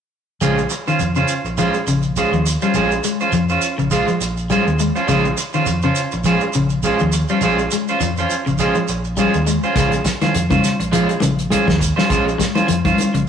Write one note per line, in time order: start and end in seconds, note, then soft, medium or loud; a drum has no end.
0.41 0.64 A#1 medium
0.41 0.64 C#3 medium
0.41 0.58 G#3 medium
0.41 0.58 C#4 medium
0.41 0.58 F4 medium
0.41 0.57 C5 medium
0.41 shekere medium
0.58 muted clean electric guitar stroke soft
0.58 shekere soft
0.70 muted clean electric guitar stroke soft
0.70 shekere medium
0.88 1.10 D#3 medium
0.88 1.00 C#4 soft
0.88 1.00 F4 soft
0.88 1.00 C5 soft
0.88 shekere soft
0.99 1.23 F2 medium
0.99 muted clean electric guitar stroke soft
0.99 shekere medium
1.15 1.38 C#3 medium
1.15 1.33 C#4 soft
1.15 1.33 F4 soft
1.15 1.33 C5 soft
1.15 shekere soft
1.28 shekere medium
1.44 1.68 A#1 medium
1.44 muted clean electric guitar stroke soft
1.44 shekere soft
1.58 1.81 F3 medium
1.58 1.75 G#3 medium
1.58 1.74 C#4 medium
1.58 1.74 F4 medium
1.58 1.74 C5 medium
1.58 shekere medium
1.74 muted clean electric guitar stroke soft
1.74 shekere soft
1.87 2.23 A#1 medium
1.87 2.10 C#3 medium
1.87 muted clean electric guitar stroke soft
1.87 shekere medium
2.02 shekere soft
2.16 2.33 G#3 medium
2.16 2.33 C#4 medium
2.16 2.32 F4 medium
2.16 2.32 C5 medium
2.16 shekere medium
2.32 2.55 D#2 medium
2.32 2.55 F3 medium
2.32 muted clean electric guitar stroke soft
2.32 shekere soft
2.46 muted clean electric guitar stroke soft
2.46 shekere medium
2.62 2.84 G3 medium
2.62 2.74 C#4 soft
2.62 2.74 F4 soft
2.62 2.75 C5 soft
2.62 muted fingered electric bass stroke soft
2.62 shekere soft
2.74 2.98 A#1 medium
2.74 2.92 G#3 medium
2.74 2.91 C#4 medium
2.74 2.91 F4 medium
2.74 2.91 C5 medium
2.74 shekere medium
2.91 muted clean electric guitar stroke soft
2.91 shekere soft
3.04 3.26 G#3 medium
3.04 muted clean electric guitar stroke soft
3.04 shekere medium
3.20 3.33 C#4 soft
3.20 3.33 F4 soft
3.20 3.33 C5 soft
3.20 shekere soft
3.32 3.56 F2 medium
3.32 3.55 F3 medium
3.32 muted clean electric guitar stroke soft
3.32 shekere medium
3.49 3.67 C#4 soft
3.49 3.66 F4 soft
3.49 3.66 C5 soft
3.49 shekere soft
3.61 shekere medium
3.78 4.02 A#1 medium
3.78 4.01 C#3 medium
3.78 muted clean electric guitar stroke soft
3.78 shekere soft
3.91 4.08 G#3 medium
3.91 4.07 F4 medium
3.91 4.07 C5 medium
3.91 muted clean electric guitar stroke medium
3.91 shekere medium
4.08 4.30 F3 medium
4.08 muted clean electric guitar stroke soft
4.08 shekere soft
4.21 4.57 A#1 medium
4.21 muted clean electric guitar stroke soft
4.21 shekere medium
4.37 shekere soft
4.50 4.72 G3 medium
4.50 4.67 G#3 medium
4.50 4.66 C#4 medium
4.50 4.66 F4 medium
4.50 4.65 C5 medium
4.50 shekere medium
4.66 4.89 D#2 medium
4.66 muted clean electric guitar stroke soft
4.66 shekere soft
4.79 5.02 G#3 medium
4.79 muted clean electric guitar stroke soft
4.79 shekere medium
4.96 5.07 C#4 soft
4.96 5.07 F4 soft
4.96 5.07 C5 soft
4.96 muted fingered electric bass stroke soft
4.96 shekere soft
5.08 5.32 A#1 medium
5.08 5.31 C#3 medium
5.08 5.25 G#3 medium
5.08 5.25 C#4 medium
5.08 5.25 F4 medium
5.08 5.24 C5 medium
5.08 shekere medium
5.25 muted clean electric guitar stroke soft
5.25 shekere soft
5.37 muted clean electric guitar stroke soft
5.37 shekere medium
5.53 5.76 D#3 medium
5.53 5.66 C#4 soft
5.53 5.66 F4 soft
5.53 5.66 C5 soft
5.53 shekere soft
5.66 5.91 F2 medium
5.66 muted clean electric guitar stroke soft
5.66 shekere medium
5.82 6.06 C#3 medium
5.82 6.00 C#4 soft
5.82 6.00 F4 soft
5.82 6.00 C5 medium
5.82 shekere soft
5.95 shekere medium
6.12 6.36 A#1 medium
6.12 muted clean electric guitar stroke soft
6.12 shekere soft
6.24 6.48 F3 medium
6.24 6.42 G#3 medium
6.24 6.42 C#4 medium
6.24 6.42 F4 medium
6.24 6.42 C5 medium
6.24 shekere medium
6.40 muted clean electric guitar stroke soft
6.40 shekere soft
6.53 6.91 A#1 medium
6.53 6.77 C#3 medium
6.53 muted clean electric guitar stroke soft
6.53 shekere medium
6.70 shekere soft
6.83 7.00 G#3 medium
6.83 7.00 C#4 medium
6.83 7.00 F4 medium
6.83 7.00 C5 medium
6.83 shekere medium
6.99 7.24 D#2 medium
6.99 7.23 F3 medium
6.99 muted clean electric guitar stroke soft
6.99 shekere soft
7.12 muted clean electric guitar stroke soft
7.12 shekere medium
7.28 7.52 G3 medium
7.28 7.42 C#4 soft
7.28 7.42 F4 soft
7.28 7.42 C5 medium
7.28 muted fingered electric bass stroke soft
7.28 shekere soft
7.41 7.66 A#1 medium
7.41 7.59 G#3 medium
7.41 7.59 C#4 medium
7.41 7.59 F4 medium
7.41 7.59 C5 medium
7.41 shekere medium
7.59 muted clean electric guitar stroke soft
7.59 shekere soft
7.71 7.94 G#3 medium
7.71 muted clean electric guitar stroke soft
7.71 shekere medium
7.88 8.01 C#4 soft
7.88 8.02 F4 soft
7.88 8.02 C5 medium
7.88 shekere soft
8.00 8.24 F2 medium
8.00 8.23 F3 medium
8.00 muted clean electric guitar stroke soft
8.00 shekere medium
8.17 8.35 C#4 soft
8.17 8.35 F4 soft
8.17 8.34 C5 soft
8.17 shekere soft
8.30 shekere medium
8.46 8.70 A#1 medium
8.46 8.69 C#3 medium
8.46 muted clean electric guitar stroke soft
8.46 shekere soft
8.58 8.76 G#3 medium
8.58 8.76 C#4 medium
8.58 8.75 F4 medium
8.58 8.75 C5 medium
8.58 shekere medium
8.75 8.98 F3 medium
8.75 muted clean electric guitar stroke soft
8.75 shekere soft
8.88 9.25 A#1 medium
8.88 muted clean electric guitar stroke soft
8.88 shekere medium
9.04 shekere soft
9.17 9.40 G3 medium
9.17 9.34 G#3 medium
9.17 9.34 C#4 medium
9.17 9.34 F4 medium
9.17 9.34 C5 medium
9.17 shekere medium
9.34 9.57 D#2 medium
9.34 muted clean electric guitar stroke soft
9.34 shekere soft
9.47 9.69 G#3 medium
9.47 muted clean electric guitar stroke soft
9.47 shekere medium
9.63 9.75 C#4 soft
9.63 9.76 F4 soft
9.63 9.76 C5 medium
9.63 muted fingered electric bass stroke soft
9.63 shekere soft
9.75 9.99 A#1 medium
9.75 9.98 C#3 medium
9.75 9.93 G#3 medium
9.75 9.92 C#4 medium
9.75 9.92 F4 medium
9.75 9.92 C5 medium
9.75 kick medium
9.75 snare soft
9.75 closed hi-hat medium
9.75 high conga soft
9.75 shekere medium
9.92 muted clean electric guitar stroke soft
9.92 closed hi-hat soft
9.92 shekere soft
10.05 muted clean electric guitar stroke soft
10.05 kick soft
10.05 snare medium
10.05 closed hi-hat soft
10.05 shekere medium
10.21 10.44 D#3 medium
10.21 10.34 C#4 soft
10.21 10.34 F4 soft
10.21 10.34 C5 soft
10.21 snare soft
10.21 closed hi-hat soft
10.21 high conga medium
10.21 shekere soft
10.34 10.58 F2 medium
10.34 muted clean electric guitar stroke soft
10.34 closed hi-hat medium
10.34 high conga soft
10.34 shekere medium
10.50 10.73 C#3 medium
10.50 10.68 C#4 soft
10.50 10.67 F4 soft
10.50 10.67 C5 medium
10.50 kick medium
10.50 closed hi-hat soft
10.50 high conga medium
10.50 shekere soft
10.64 snare soft
10.64 closed hi-hat soft
10.64 shekere medium
10.80 11.03 A#1 medium
10.80 muted clean electric guitar stroke soft
10.80 closed hi-hat soft
10.80 shekere soft
10.92 11.15 F3 medium
10.92 11.09 G#3 medium
10.92 11.09 C#4 medium
10.92 11.08 F4 medium
10.92 11.08 C5 medium
10.92 closed hi-hat medium
10.92 high conga soft
10.92 shekere medium
11.09 muted clean electric guitar stroke soft
11.09 closed hi-hat soft
11.09 shekere soft
11.20 11.58 A#1 medium
11.20 11.44 C#3 medium
11.20 muted clean electric guitar stroke soft
11.20 closed hi-hat soft
11.20 high conga medium
11.20 shekere medium
11.39 closed hi-hat soft
11.39 shekere soft
11.50 11.68 G#3 medium
11.50 11.67 C#4 medium
11.50 11.66 F4 medium
11.50 11.66 C5 medium
11.50 closed hi-hat medium
11.50 high conga medium
11.50 shekere medium
11.67 11.91 D#2 medium
11.67 11.90 F3 medium
11.67 muted clean electric guitar stroke soft
11.67 kick medium
11.67 snare medium
11.67 high conga medium
11.67 shekere soft
11.80 muted clean electric guitar stroke soft
11.80 kick medium
11.80 closed hi-hat soft
11.80 shekere medium
11.96 12.20 G3 medium
11.96 12.08 C#4 soft
11.96 12.09 F4 soft
11.96 12.09 C5 medium
11.96 muted fingered electric bass stroke soft
11.96 snare medium
11.96 shekere soft
12.09 12.33 A#1 medium
12.09 12.26 G#3 medium
12.09 12.25 C#4 medium
12.09 12.25 F4 medium
12.09 12.25 C5 medium
12.09 kick medium
12.09 closed hi-hat medium
12.09 high conga soft
12.09 shekere medium
12.26 muted clean electric guitar stroke soft
12.26 shekere soft
12.38 12.61 G#3 medium
12.38 muted clean electric guitar stroke soft
12.38 kick soft
12.38 snare medium
12.38 closed hi-hat soft
12.38 shekere medium
12.55 12.67 C#4 soft
12.55 12.67 F4 medium
12.55 12.68 C5 medium
12.55 closed hi-hat soft
12.55 high conga medium
12.55 shekere soft
12.68 12.92 F2 medium
12.68 12.91 F3 medium
12.68 muted clean electric guitar stroke soft
12.68 closed hi-hat medium
12.68 high conga soft
12.68 shekere medium
12.85 13.02 C#4 soft
12.85 13.01 F4 soft
12.85 13.01 C5 medium
12.85 kick medium
12.85 closed hi-hat soft
12.85 high conga medium
12.85 shekere soft
12.98 closed hi-hat soft
12.98 high conga medium
12.98 shekere medium
13.14 13.29 A#1 medium
13.14 13.29 C#3 medium
13.14 muted clean electric guitar stroke soft
13.14 closed hi-hat soft
13.14 shekere soft